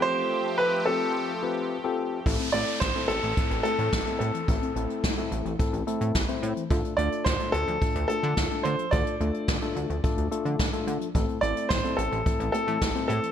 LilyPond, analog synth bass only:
\new Staff \with { instrumentName = "Analog synth bass" } { \clef bass \time 4/4 \key a \minor \tempo 4 = 108 r1 | a,,16 r16 a,,16 r16 a,,16 r16 a,,16 a,,16 r16 a,,16 r16 a,16 a,,16 r16 a,16 r16 | a,,16 r16 a,,16 r16 a,,16 r16 a,,16 a,,16 r16 a,,16 r16 a,16 a,,16 r16 a,16 r16 | d,16 r16 d,16 r16 d,16 r16 d,16 d,16 r16 d,16 r16 d16 d,16 r16 d16 r16 |
d,16 r16 d,16 r16 d,16 r16 d,16 d,16 r16 d,16 r16 d16 d,16 r16 d16 r16 | a,,16 r16 a,,16 r16 a,,16 r16 a,,16 a,,16 r16 a,,16 r16 a,16 a,,16 r16 a,16 r16 | }